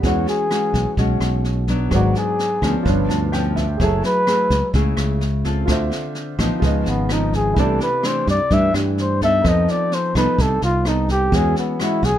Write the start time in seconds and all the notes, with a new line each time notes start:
0.00 E2 E3 F#4 G#4 B4, kick, snare
0.04 G#3 C#4 F#4 C#5
0.27 G#4, snare
0.51 G#3 C#4 F#4, cross-stick, snare
0.74 B1, kick, snare
0.97 B1 B2 G#3 C#4 F#4, kick, snare
1.20 B1, cross-stick, snare
1.44 snare
1.68 F#3 B3 D4, kick, snare
1.89 G#1 G#2 F#4 G#4 B4, kick, cross-stick, snare
1.95 F#4 D5
2.15 G#4, snare
2.39 snare
2.62 D2 F3 B3 C#4, kick, cross-stick, snare
2.83 G1 G2 F4 B4 C#5, kick, snare
2.89 D4
3.09 D2 A5, snare
3.32 F3 B3 C#4 G5, cross-stick, snare
3.56 E5, kick, snare
3.77 F#1 F#3 A3 E4 G#4 C#5, kick, snare
3.83 A4 E5
4.03 B4, snare
4.27 A3 E4 G#4, cross-stick, snare
4.50 C#2, kick, snare
4.73 C#2 C#3 A3 E4 G#4, kick, snare
4.97 C#2, cross-stick, snare
5.21 snare
5.45 C4 F4 A4, kick, snare
5.66 D2 D3 F4 A4, kick, cross-stick, snare
5.70 C5 E5
5.91 snare
6.15 snare
6.39 A1 F3 B3 D#4, kick, cross-stick, snare
6.60 C#2 C#3 F4 G#4, kick, snare
6.64 B4 D#5
6.86 G#1 B3, snare
7.09 F3 B3 D#4, cross-stick, snare
7.33 G#4, kick, snare
7.54 C2 C3 E3 A3 E4 G4, kick, snare
7.58 D4 A4 D5
7.80 B4, snare
8.03 E3 A3 D4 C5, cross-stick, snare
8.27 G2 D5, kick, snare
8.50 G2 E3 A3 D4 E5, kick, snare
8.74 G2 G4, cross-stick, snare
8.98 C5, snare
9.21 B3 D#4 A4 E5, kick, snare
9.42 F2 F3 D#4 A4 B4, kick, cross-stick, snare
9.48 C4 D#5
9.68 D5, snare
9.92 C5, snare
10.15 C2 B3 D#4 A4 B4, kick, cross-stick, snare
10.38 C2 C3 A4, kick, snare
10.62 C2 F4, snare
10.85 B3 D#4 A4, cross-stick, snare
11.09 G4, kick, snare
11.30 E2 E3 G#3 C#4 F#4 G#4 B4, kick, snare
11.34 F#4 G#4 C#5
11.56 B3, snare
11.80 G#3 C#4 E4 F#4, cross-stick, snare
12.03 B1 G#4, kick, snare